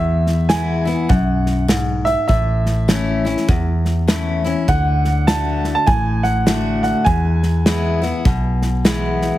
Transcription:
Already playing: E2 E5
0.27 snare
0.49 E3 G#3 B3 E4 G#5, snare, hi-hat pedal
0.85 B3 E4, snare
1.09 B1 F#2 F#5, kick, snare
1.47 snare
1.68 G#2, snare, hi-hat pedal
2.05 E5, snare
2.28 A1 A2 E5, kick, snare
2.66 snare
2.88 E3 A3 C#4 E4, snare, hi-hat pedal
3.25 C#4 E4, snare
3.37 snare
3.48 E2, kick, snare
3.85 snare
4.08 E3 A3 C#4 E4, snare, hi-hat pedal
4.44 C#4 E4, snare
4.68 D2 D3 F#5, kick, snare
5.05 snare
5.27 D3 A3 D4 F#4 A5, snare, hi-hat pedal
5.64 snare
5.75 A5
5.86 A1 A2 G#5, kick, snare
6.23 F#5, snare
6.46 D3 A3 D4 F#4, snare, hi-hat pedal
6.83 F#5, snare
7.05 E2 G#5, kick, snare
7.43 snare
7.66 E3 G#3 B3 E4, snare, hi-hat pedal
8.02 B3 E4, snare
8.25 B1 B2, kick, snare
8.62 snare
8.85 E3 G#3 B3 E4, snare, hi-hat pedal
9.22 snare

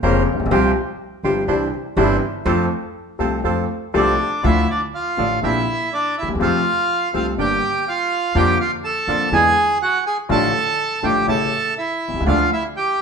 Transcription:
0.03 F1 F2 C#3 A#3 C4 C#4 F4 A#4 C5
0.33 A1
0.39 A#1
0.46 B1
0.51 C2 C3 F3 G3 C4 F4 G4 C5
1.23 G1 G2 F3 G3 C4 F4 G4 C5
1.47 C2 C3 E3 C4 D4 E4 G4 C5
1.97 G1 G2 E3 C4 D4 E4 G4 C5
2.45 F2 F3 A3 C4 F4 A4
3.19 C2 C3 F3 A3 C4 F4 A4
3.44 F2 F3 A3 C4 F4 A4
3.94 C2 C3 F3 A3 C4 D4 F4 A4 D5
4.43 D2 D3 F3 A3 D4 E4 F4 A4 E5
4.70 D4 D5
4.95 F4 F5
5.17 A1 A2 D3 F3 A3 D4 F4 A4
5.42 A#1 A#2 C3 F3 A#3 C4 D4 E4 A#4 E5
5.93 D4 D5
6.18 D2 E4 E5
6.23 D2
6.28 D#2
6.34 E2
6.39 F2 C3 F3 A3 C4 F4 A4 F5
7.13 C2 C3 F3 A3 C4 F4 A4 F5
7.38 G1 G2 D3 G3 A#3 D4 G4 G5
7.88 F4 F5
8.35 F2 D3 F3 A#3 D4 F4 G4 G5
8.60 F4 F5
8.84 A4 A5
9.07 F2 D3 F3 A#3 D4 F4
9.32 E2 D3 E3 G#3 B3 D4 E4 G#4 G#5
9.82 F#4 F#5
10.07 G#4 G#5
10.29 A1 A2 D3 F3 A3 D4 F4 A4 A5
11.02 A1 A2 D3 F3 A3 D4 F4 G4 G5
11.27 A1 A2 C#3 E3 A3 C#4 E4 A4 A5
11.78 E4 E5
12.08 B1
12.14 C2
12.20 C#2
12.26 D2 D3 F3 A3 D4 F4 F5
12.53 E4 E5
12.77 G4 G5

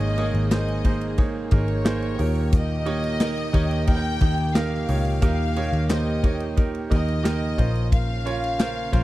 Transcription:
Already playing: G#1 G#2 D#3 A#3 D#4 G#4 A#4 C5 C#5 D#5
0.01 ride
0.18 A#3 D#4 G#4 C#5, ride
0.34 G#1, ride
0.51 A#3 D#4 G#4 C5 D#5, snare, clap, ride
0.68 ride
0.84 A#3 D#4 G#4 C5, kick, ride
1.01 ride
1.18 A#3 D#4 G#4 C#5, kick, ride
1.51 G#1 A#3 D#4 G#4 A#4 C#5, kick, ride
1.68 ride
1.85 A#3 D#4 G#4 C5, snare, clap, ride
2.02 ride
2.18 D#2 A#2 A#3 D#4 G4 A#4, open hi-hat, ride
2.35 ride
2.52 D#5, kick, hi-hat pedal, ride
2.86 A#3 D#4 G4 C#5, ride
3.04 ride
3.20 A#3 D#4 G4 A#4, snare, clap, ride
3.38 ride
3.53 D#2 A#3 D#4 G4 C#5, kick, ride
3.71 ride
3.87 A#3 D#4 G4 A#4 G5, kick, ride
4.21 D#2 A#3 D#4 G4 A#4, kick, ride
4.38 ride
4.55 A#3 D#4 G4 A#4 F5, snare, clap, ride
4.88 C#2 A#2 A#3 D#4 G4 C#5, open hi-hat, ride
5.05 ride
5.22 D#2 A#3 D#4 G4 A#4 F5, kick, hi-hat pedal, ride
5.56 A#3 D#4 G4 C#5, ride
5.73 D#2, ride
5.89 A#3 D#4 G4 C5 D#5, snare, clap, ride
6.23 A#3 D#4 G4 C#5, kick, ride
6.40 ride
6.56 A#3 D#4 G4 A#4, kick, ride
6.75 ride
6.90 D#2 A#3 D#4 G4 A#4 D#5, kick, ride
7.08 ride
7.23 A#3 D#4 G4 A#4, snare, clap, ride
7.57 A#1 C#3 C#4 F4 A#4 C5, kick, ride
7.75 ride
7.92 F5, kick, ride
8.25 C#4 F4 A#4 C#5, ride
8.44 ride
8.59 C#4 F4 A#4 C5, snare, clap, ride
8.92 A#1 C#4 F4 A#4 C5, kick, ride

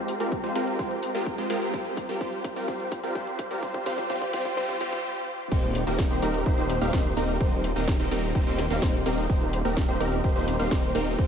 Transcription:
Already playing: G#3 C4 F4 G4 C5
0.08 open hi-hat
0.20 G#3 C4 F4 G4 A#4, closed hi-hat
0.32 kick, closed hi-hat
0.44 G#3 C4 F4 G4 C5, closed hi-hat
0.56 G#3 C4 F4 G4 A#4, open hi-hat
0.67 closed hi-hat
0.79 G#3 C4 F4 G4 C5, kick, closed hi-hat
0.91 closed hi-hat
1.03 open hi-hat
1.15 G#3 C4 F4 G4 A#4, closed hi-hat
1.26 kick, closed hi-hat
1.38 G#3 C4 F4 G4 C5, closed hi-hat
1.50 G#3 C4 F4 G4 A#4, open hi-hat
1.62 closed hi-hat
1.74 G3 C4 F4 G4 C5, kick, closed hi-hat
1.85 closed hi-hat
1.97 kick, open hi-hat
2.09 G3 C4 F4 G4 A#4, closed hi-hat
2.21 G3 C4 F4 G4 C5, kick, closed hi-hat
2.33 closed hi-hat
2.44 kick, open hi-hat
2.56 G3 C4 F4 G4 A#4, closed hi-hat
2.68 G3 C4 F4 G4 C5, kick, closed hi-hat
2.80 closed hi-hat
2.92 kick, open hi-hat
3.03 G3 C4 F4 G4 A#4, closed hi-hat
3.15 G3 C4 F4 G4 C5, kick, closed hi-hat
3.27 closed hi-hat
3.39 kick, open hi-hat
3.51 G3 C4 F4 G4 A#4, closed hi-hat
3.63 G3 C4 F4 G4 C5, kick, closed hi-hat
3.74 kick, closed hi-hat
3.86 G3 C4 F4 G4 C5, kick, open hi-hat
3.98 kick, closed hi-hat
4.10 G3 C4 F4 G4 C5, kick, closed hi-hat
4.22 kick, closed hi-hat
4.33 G3 C4 F4 G4 C5, kick, open hi-hat
4.45 kick, closed hi-hat
4.57 G3 C4 F4 G4 C5, kick, closed hi-hat
4.69 kick, closed hi-hat
4.81 G3 C4 F4 G4 C5, kick, open hi-hat
4.92 kick, closed hi-hat
5.52 D#1 A#3 C4 D#4 G4 C5, kick, closed hi-hat, crash
5.63 closed hi-hat
5.75 open hi-hat
5.87 D#1 A#3 C4 D#4 G4 A#4, closed hi-hat
5.99 kick, snare, closed hi-hat
6.11 D#1 A#3 C4 D#4 G4 C5, closed hi-hat
6.22 D#1 A#3 C4 D#4 G4 A#4, open hi-hat
6.34 closed hi-hat
6.46 D#1 A#3 C4 D#4 G4 C5, kick, closed hi-hat
6.58 D#1 A#3 C4 D#4 G4 C5, closed hi-hat
6.70 open hi-hat
6.81 D#1 A#3 C4 D#4 G4 F5, closed hi-hat
6.93 D#1 A#3 C4 D#4 G4 C5, kick, snare, closed hi-hat
7.05 closed hi-hat
7.17 D#1 A#3 C4 D#4 G4 A#4, open hi-hat
7.29 closed hi-hat
7.41 D#1 A#3 C4 D#4 G4 C5, kick, closed hi-hat
7.52 closed hi-hat
7.64 open hi-hat
7.76 D#1 A#3 C4 D#4 G4 A#4, closed hi-hat
7.88 kick, snare, closed hi-hat
8.00 D#1 A#3 C4 D#4 G4 C5, closed hi-hat
8.11 D#1 A#3 C4 D#4 G4 A#4, open hi-hat
8.23 closed hi-hat
8.35 D#1 A#3 C4 D#4 G4 C5, kick, closed hi-hat
8.47 D#1 A#3 C4 D#4 G4 C5, closed hi-hat
8.58 snare, open hi-hat
8.70 D#1 A#3 C4 D#4 G4 F5, closed hi-hat
8.82 D#1 A#3 C4 D#4 G4 C5, kick, snare, closed hi-hat
8.94 closed hi-hat
9.06 D#1 A#3 C4 D#4 G4 A#4, open hi-hat
9.18 closed hi-hat
9.29 D#1 A#3 C4 D#4 G4 C5, kick, closed hi-hat
9.41 closed hi-hat
9.53 open hi-hat
9.65 D#1 A#3 C4 D#4 G4 A#4, closed hi-hat
9.77 kick, snare, closed hi-hat
9.89 D#1 A#3 C4 D#4 G4 C5, closed hi-hat
10.00 D#1 A#3 C4 D#4 G4 A#4, open hi-hat
10.12 closed hi-hat
10.24 D#1 A#3 C4 D#4 G4 C5, kick, closed hi-hat
10.36 D#1 A#3 C4 D#4 G4 C5, closed hi-hat
10.48 open hi-hat
10.59 D#1 A#3 C4 D#4 G4 F5, closed hi-hat
10.71 D#1 A#3 C4 D#4 G4 C5, kick, snare, closed hi-hat
10.83 closed hi-hat
10.95 D#1 A#3 C4 D#4 G4 A#4, open hi-hat
11.07 closed hi-hat
11.18 D#1 A#3 C4 D#4 G4 C5, kick, closed hi-hat

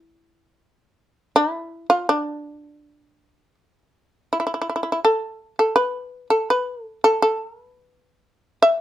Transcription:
Already playing: E4
1.36 E4
1.90 F4
2.09 D4
4.33 E4
4.40 E4
4.47 E4
4.54 E4
4.62 E4
4.70 E4
4.76 E4
4.83 E4
4.92 E4
5.05 A4
5.59 A4
5.76 B4
6.30 A4
6.50 B4
6.82 A4
7.04 A4
7.22 A4
7.47 A#4
7.62 B4
8.62 E5

